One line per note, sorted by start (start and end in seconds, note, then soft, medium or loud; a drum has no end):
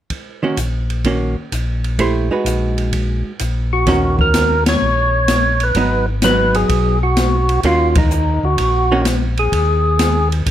0.10 kick soft
0.10 ride soft
0.43 0.56 D#3 medium
0.43 0.57 A#3 medium
0.43 0.57 C#4 medium
0.43 0.57 F#4 medium
0.57 1.35 A#1 medium
0.57 hi-hat pedal soft
0.57 ride medium
0.90 ride soft
1.04 1.34 D#3 soft
1.04 1.34 A#3 soft
1.04 1.35 C#4 soft
1.04 1.35 F#4 soft
1.04 kick soft
1.04 ride soft
1.52 2.30 A#1 medium
1.52 hi-hat pedal soft
1.52 ride soft
1.84 ride soft
1.99 2.28 A3 soft
1.99 2.28 E4 soft
1.99 2.29 G4 soft
1.99 2.29 C5 soft
1.99 kick soft
1.99 ride medium
2.31 3.31 G#3 soft
2.31 3.31 D#4 soft
2.31 3.32 F#4 medium
2.31 3.32 B4 soft
2.45 3.24 A#1 medium
2.45 hi-hat pedal soft
2.45 ride soft
2.78 ride soft
2.93 kick soft
2.93 ride soft
3.39 4.18 A#1 medium
3.39 hi-hat pedal soft
3.39 ride medium
3.73 4.16 F#4 medium
3.86 4.77 D#2 medium
3.86 5.19 D#3 soft
3.86 5.20 C#4 soft
3.86 5.20 F#4 medium
3.86 5.20 A#4 soft
3.86 kick soft
3.86 snare soft
3.86 ride soft
4.19 4.64 A#4 loud
4.19 kick soft
4.34 snare medium
4.34 hi-hat pedal medium
4.34 ride medium
4.66 5.64 C#5 loud
4.66 snare medium
4.66 ride medium
4.82 5.72 A#1 medium
5.28 snare medium
5.28 hi-hat pedal medium
5.28 ride medium
5.60 6.06 B4 medium
5.60 ride soft
5.75 6.65 G#1 medium
5.75 6.05 F#3 medium
5.75 6.05 B3 medium
5.75 6.05 D#4 medium
5.75 kick soft
5.75 ride medium
6.22 6.96 F#3 medium
6.22 6.97 B3 medium
6.22 6.97 D#4 medium
6.22 6.56 B4 medium
6.22 snare medium
6.22 hi-hat pedal medium
6.22 ride medium
6.54 6.99 G#4 medium
6.54 ride soft
6.69 7.59 B1 medium
6.69 kick soft
6.69 ride medium
7.03 7.60 F#4 medium
7.17 snare medium
7.17 hi-hat pedal soft
7.17 ride medium
7.49 ride soft
7.63 8.39 D#2 medium
7.63 7.93 D#3 soft
7.63 7.93 A#3 soft
7.63 7.93 C#4 soft
7.63 7.98 F4 medium
7.63 7.94 F#4 medium
7.63 kick soft
7.63 ride medium
7.95 8.45 D#4 medium
7.95 kick medium
7.95 ride medium
8.11 hi-hat pedal soft
8.43 8.57 D2 medium
8.43 9.02 F#4 medium
8.58 9.48 A#1 medium
8.58 kick soft
8.58 ride medium
8.92 9.04 D#3 medium
8.92 9.04 A#3 medium
8.92 9.05 C#4 medium
8.92 9.05 F#4 medium
9.05 snare medium
9.05 hi-hat pedal medium
9.05 ride medium
9.37 10.29 G#4 medium
9.37 ride soft
9.52 10.43 D#2 medium
9.52 kick soft
9.52 ride medium
9.99 snare medium
9.99 hi-hat pedal medium
9.99 ride medium
10.32 ride soft
10.46 10.51 A#1 medium
10.46 kick soft
10.46 ride medium